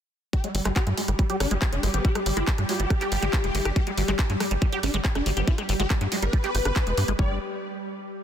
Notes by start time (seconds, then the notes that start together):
0.33 G3 G4, kick, cross-stick, closed hi-hat
0.44 G3 G#3, closed hi-hat
0.55 G1 G3, open hi-hat
0.65 G1 G3 G#3, cross-stick, clap, closed hi-hat
0.76 B3 G4, kick, clap, closed hi-hat
0.87 G2 G3 G#3, closed hi-hat
0.97 G3 G#3, open hi-hat
1.08 G1 G3, cross-stick, closed hi-hat
1.19 G3, kick, closed hi-hat
1.30 G3 G4, closed hi-hat
1.40 G1 G3 D4, cross-stick, open hi-hat
1.51 G1 G3 G#3, closed hi-hat
1.62 G3 B3, kick, clap, closed hi-hat
1.72 F1 G#3 D4, closed hi-hat
1.83 G1 G3 G#3, cross-stick, open hi-hat
1.94 G1 G3 B3 G4, closed hi-hat
2.05 G3 G4, kick, closed hi-hat
2.15 G3 G#3, cross-stick, closed hi-hat
2.26 G1 G3, open hi-hat
2.37 G1 G#3 F4, closed hi-hat
2.48 G3 B3, kick, clap, closed hi-hat
2.58 G2 G3 G#3, cross-stick, closed hi-hat
2.69 G3 G#3 F4, open hi-hat
2.80 G1 G3 G4, closed hi-hat
2.90 G3, kick, cross-stick, closed hi-hat
3.01 G4, clap, closed hi-hat
3.12 G1 G3 F4, open hi-hat
3.22 G1 G#3, closed hi-hat
3.33 B3, kick, cross-stick, clap, closed hi-hat
3.44 F1 G#3, closed hi-hat
3.55 G1 G#3, open hi-hat
3.65 G1 G4, cross-stick, closed hi-hat
3.76 G3 G4, kick, closed hi-hat
3.87 G3 G#3, closed hi-hat
3.97 G1 G3, open hi-hat
4.08 G1 G3 G#3, cross-stick, clap, closed hi-hat
4.19 B3 G4, kick, clap, closed hi-hat
4.30 G2 G3 G#3, closed hi-hat
4.40 G3 G#3, cross-stick, open hi-hat
4.51 G1 G3, closed hi-hat
4.62 G3, kick, closed hi-hat
4.72 G3 G4, closed hi-hat
4.83 G1 G3 D4, cross-stick, open hi-hat
4.94 G1 G3 G#3, closed hi-hat
5.05 B3, kick, clap, closed hi-hat
5.15 F1 G#3 D4, cross-stick, closed hi-hat
5.26 G1 G3 G#3, open hi-hat
5.37 G1 G3 B3 G4, closed hi-hat
5.47 G3 F4, kick, closed hi-hat
5.58 G3 G#3, cross-stick, closed hi-hat
5.69 G1 G3, open hi-hat
5.80 G1 G#3 G4, closed hi-hat
5.90 G3 B3, kick, cross-stick, clap, closed hi-hat
6.01 G2 G3 G#3, closed hi-hat
6.12 G3 G#3, open hi-hat
6.22 G1 G3 B4, closed hi-hat
6.33 G3, kick, cross-stick, closed hi-hat
6.44 G4, clap, closed hi-hat
6.55 G1 G4, open hi-hat
6.65 G1 D4, cross-stick, closed hi-hat
6.76 G4, kick, clap, closed hi-hat
6.87 F1 G#3, closed hi-hat
6.97 G2 G4, open hi-hat
7.08 G1 G#3, cross-stick, closed hi-hat
7.19 G1 G3 D5, kick